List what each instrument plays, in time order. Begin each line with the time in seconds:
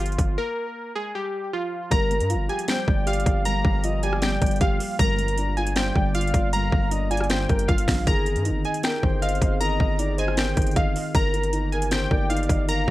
Already playing: 808-style bass G1
0.00 synth keys F4
0.06 closed hi-hat
0.12 closed hi-hat
0.18 808-style bass G1, kick, closed hi-hat
0.38 synth keys A#4
0.95 synth keys G#4
1.15 synth keys G4
1.53 synth keys F4
1.91 808-style bass G1, ambient pad F3 A#3 G4, grand piano G3, soft synth lead A#4, synth keys A#5, kick, closed hi-hat
2.11 grand piano G3, closed hi-hat
2.20 808-style bass G2, closed hi-hat
2.30 grand piano F4, closed hi-hat
2.35 808-style bass G1
2.49 grand piano G4, synth keys G#5, closed hi-hat
2.59 closed hi-hat
2.68 grand piano G3, soft synth lead C5, synth keys G5, finger snap, snare, closed hi-hat
2.88 808-style bass G1, grand piano G3, soft synth lead D5, kick
3.06 grand piano G4, synth keys F5, closed hi-hat
3.13 closed hi-hat
3.20 closed hi-hat
3.26 808-style bass G1, grand piano G4, kick, closed hi-hat
3.45 grand piano G3, soft synth lead F5, synth keys A#5, closed hi-hat
3.65 808-style bass G1, grand piano G3, kick
3.84 grand piano F4, soft synth lead D#5, closed hi-hat
4.03 grand piano G4, soft synth lead D5, synth keys G#5, closed hi-hat
4.13 cross-stick
4.22 grand piano G3, synth keys G5, finger snap, snare, closed hi-hat
4.42 808-style bass G1, grand piano G3, kick, closed hi-hat
4.46 closed hi-hat
4.51 closed hi-hat
4.56 closed hi-hat
4.61 808-style bass G1, grand piano G4, synth keys F5, kick, closed hi-hat
4.80 grand piano G4, open hi-hat
4.99 808-style bass G1, grand piano G2, ambient pad D3 F4, soft synth lead A#4, synth keys A#5, kick, closed hi-hat
5.18 grand piano G2, closed hi-hat
5.28 closed hi-hat
5.38 grand piano D4, closed hi-hat
5.57 grand piano F4, synth keys G#5, closed hi-hat
5.67 closed hi-hat
5.76 grand piano G2, soft synth lead C5, synth keys G5, finger snap, snare, closed hi-hat
5.95 808-style bass G1, grand piano G2, soft synth lead D5, kick
6.14 grand piano F4, synth keys F5, closed hi-hat
6.21 closed hi-hat
6.27 closed hi-hat
6.34 808-style bass G1, grand piano F4, kick, closed hi-hat
6.53 grand piano G2, soft synth lead F5, synth keys A#5, closed hi-hat
6.72 808-style bass G1, grand piano G2, kick
6.91 grand piano D4, soft synth lead D#5, closed hi-hat
7.10 grand piano F4, soft synth lead D5, synth keys G#5, closed hi-hat
7.17 cross-stick, closed hi-hat
7.24 closed hi-hat
7.30 grand piano G2, soft synth lead C5, synth keys G5, finger snap, snare, closed hi-hat
7.49 808-style bass G1, grand piano G2, soft synth lead A#4, kick, closed hi-hat
7.59 closed hi-hat
7.68 808-style bass G1, grand piano F4, synth keys F5, kick, closed hi-hat
7.78 closed hi-hat
7.88 808-style bass A#1, grand piano F4, finger snap, kick, snare, open hi-hat
8.07 808-style bass G1, ambient pad D#3 C4 G#4, grand piano D#3, soft synth lead G#4, synth keys A#5, kick, closed hi-hat
8.26 grand piano D#3, closed hi-hat
8.36 808-style bass G2, closed hi-hat
8.45 grand piano D#4, closed hi-hat
8.50 808-style bass G1
8.65 grand piano D#5, synth keys G#5, closed hi-hat
8.74 closed hi-hat
8.83 grand piano D#3, soft synth lead A#4, synth keys G5, finger snap, snare, closed hi-hat
9.03 808-style bass G1, grand piano D#3, soft synth lead C5, kick
9.22 grand piano D#5, synth keys F5, closed hi-hat
9.29 closed hi-hat
9.35 closed hi-hat
9.42 808-style bass G1, grand piano D#5, kick, closed hi-hat
9.61 grand piano D#3, soft synth lead D#5, synth keys A#5, closed hi-hat
9.80 808-style bass G1, grand piano D#3, kick
9.99 grand piano D#4, soft synth lead D5, closed hi-hat
10.18 soft synth lead C5, grand piano D#5, synth keys G#5, closed hi-hat
10.28 cross-stick
10.37 grand piano D#3, synth keys G5, finger snap, snare, closed hi-hat
10.57 808-style bass G1, grand piano D#3, kick, closed hi-hat
10.62 closed hi-hat
10.67 closed hi-hat
10.71 closed hi-hat
10.76 808-style bass G1, grand piano D#5, synth keys F5, kick, closed hi-hat
10.96 grand piano D#5, open hi-hat
11.14 808-style bass G1, grand piano D#3, ambient pad A#3 G4, soft synth lead A#4, synth keys A#5, kick, closed hi-hat
11.34 grand piano D#3, closed hi-hat
11.43 closed hi-hat
11.53 grand piano D#4, closed hi-hat
11.72 grand piano A#4, synth keys G#5, closed hi-hat
11.82 closed hi-hat
11.91 grand piano D#3, soft synth lead C5, synth keys G5, finger snap, snare, closed hi-hat
12.11 808-style bass G1, grand piano D#3, soft synth lead D5, kick
12.30 grand piano D#4, synth keys F5, closed hi-hat
12.37 closed hi-hat
12.43 closed hi-hat
12.49 808-style bass G1, grand piano D#5, kick, closed hi-hat
12.68 grand piano D#3, soft synth lead F5, synth keys A#5, closed hi-hat